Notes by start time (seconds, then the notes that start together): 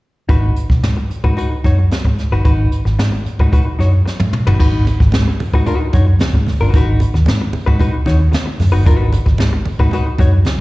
0.29 G#1 D#4 F#4 B4, kick, closed hi-hat
0.56 closed hi-hat
0.70 B1, muted hollow-body jazz guitar stroke, kick, snare
0.83 G#2, muted hollow-body jazz guitar stroke, snare, closed hi-hat
0.97 muted hollow-body jazz guitar stroke
1.10 muted fingered electric bass stroke, closed hi-hat
1.24 G#2 D#4 F#4 B4, kick
1.37 D#4 F#4 B4, closed hi-hat
1.51 muted hollow-body jazz guitar stroke
1.64 F#2 D#4 F#4 C#5, kick, snare, closed hi-hat
1.78 muted hollow-body jazz guitar stroke
1.91 muted hollow-body jazz guitar stroke, snare, closed hi-hat
2.05 G#2, muted hollow-body jazz guitar stroke, kick
2.18 snare, closed hi-hat
2.31 G1 D#4 F#4 B4
2.45 G#1 D#4 F#4 B4, kick, closed hi-hat
2.72 closed hi-hat
2.85 G#1, muted hollow-body jazz guitar stroke, snare
2.99 G#2, muted hollow-body jazz guitar stroke, snare, closed hi-hat
3.12 muted hollow-body jazz guitar stroke
3.26 muted fingered electric bass stroke, closed hi-hat
3.39 G#2 D#4 F#4 B4, kick
3.52 D#4 F#4 B4, kick, closed hi-hat
3.65 muted hollow-body jazz guitar stroke
3.79 F#2 D#4 F#4 C#5, snare, closed hi-hat
3.92 muted hollow-body jazz guitar stroke
4.06 muted hollow-body jazz guitar stroke, snare
4.20 G#2, muted hollow-body jazz guitar stroke, high tom
4.33 mid tom
4.47 G1 D#4 F#4 B4, floor tom
4.59 G#1 D#4 F#4 B4, kick, crash
4.87 closed hi-hat, muted conga
5.00 G#1, muted hollow-body jazz guitar stroke, kick, snare
5.12 G#2, muted hollow-body jazz guitar stroke, snare, closed hi-hat, high conga
5.28 muted hollow-body jazz guitar stroke
5.40 muted fingered electric bass stroke, open hi-hat, muted conga
5.53 G#2 D#4 F#4 B4, kick
5.66 D#4 F#4 B4, closed hi-hat, muted conga, low conga
5.81 muted hollow-body jazz guitar stroke
5.93 F#2 D#4 F#4 C#5, kick, snare, closed hi-hat, muted conga
6.07 muted hollow-body jazz guitar stroke
6.19 muted hollow-body jazz guitar stroke, snare, closed hi-hat, high conga
6.34 G#2, muted hollow-body jazz guitar stroke, kick
6.47 snare, open hi-hat, high conga
6.60 G1 D#4 F#4 B4
6.74 G#1 D#4 F#4 B4, kick, closed hi-hat
7.00 closed hi-hat, muted conga
7.14 D#2, muted hollow-body jazz guitar stroke, snare
7.26 G#2, muted hollow-body jazz guitar stroke, snare, closed hi-hat, high conga
7.41 muted hollow-body jazz guitar stroke
7.53 muted fingered electric bass stroke, open hi-hat, muted conga
7.66 G#2 D#4 F#4 B4, kick
7.79 D#4 F#4 B4, kick, closed hi-hat, low conga
7.94 muted hollow-body jazz guitar stroke
8.06 D#2 D#4 F#4 C#5, snare, closed hi-hat, muted conga
8.19 muted hollow-body jazz guitar stroke
8.31 muted hollow-body jazz guitar stroke, snare, closed hi-hat, high conga
8.46 muted hollow-body jazz guitar stroke
8.60 F#2, snare, open hi-hat, high conga
8.72 G1 D#4 F#4 B4
8.86 G#1 D#4 F#4 B4, kick, closed hi-hat
9.13 closed hi-hat, muted conga
9.26 G#1, muted hollow-body jazz guitar stroke, kick, snare
9.38 G#2, muted hollow-body jazz guitar stroke, snare, closed hi-hat, high conga
9.53 muted hollow-body jazz guitar stroke
9.65 muted fingered electric bass stroke, open hi-hat, muted conga
9.79 G#2 D#4 F#4 B4, kick
9.91 D#4 F#4 B4, closed hi-hat, low conga
10.06 muted hollow-body jazz guitar stroke
10.18 F#2 D#4 F#4 C#5, kick, snare, closed hi-hat, muted conga
10.33 muted hollow-body jazz guitar stroke
10.45 muted hollow-body jazz guitar stroke, snare, closed hi-hat, high conga